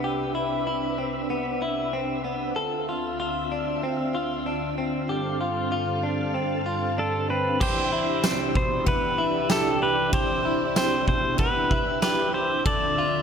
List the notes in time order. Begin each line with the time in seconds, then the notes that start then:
Already playing: C2 C3 D4 B4 E5
0.04 G4
0.35 E4
0.67 E4
0.98 C4
1.30 B3
1.62 E4
1.93 C4
2.24 B3
2.56 D2 D3 C4 F4 A4 E5
2.89 F4
3.20 F4
3.52 D4
3.83 C4
4.15 F4
4.46 D4
4.78 C4
5.08 G2 G4 A4 F5
5.41 F4
5.72 F4
6.03 D4
6.34 C4
6.66 F4
6.98 D4 A4
7.30 C4 B4
7.60 E3 G4 C5 E5, kick, crash
7.92 E4
8.24 C4, snare, ride, tambourine
8.55 B2 C5, kick
8.86 B3 B4, kick, ride
9.18 E4
9.49 G4 A4, snare, ride, tambourine
9.82 G4 B4
10.13 G4 C5, kick, ride
10.45 E4
10.76 C4 C5, snare, ride, tambourine
11.08 B2 C5, kick
11.38 B3 B4, kick, ride
11.71 E4, kick
12.02 G4 B4, snare, ride, tambourine
12.34 G4 C5
12.66 D2 D3 F3 C4 A4 D5, kick, ride
12.98 F4